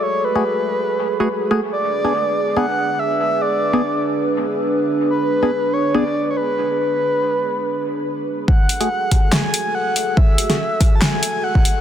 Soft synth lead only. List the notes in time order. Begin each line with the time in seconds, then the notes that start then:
0.03 C#5
0.24 B4
1.72 D5
2.57 F#5
2.99 E5
3.20 E5
3.41 D5
5.10 B4
5.73 C#5
5.95 D5
6.30 C#5
6.37 B4
6.79 B4
8.48 F#5
9.33 G#5
9.75 F#5
10.17 E5
10.95 A5
11.01 G#5
11.44 F#5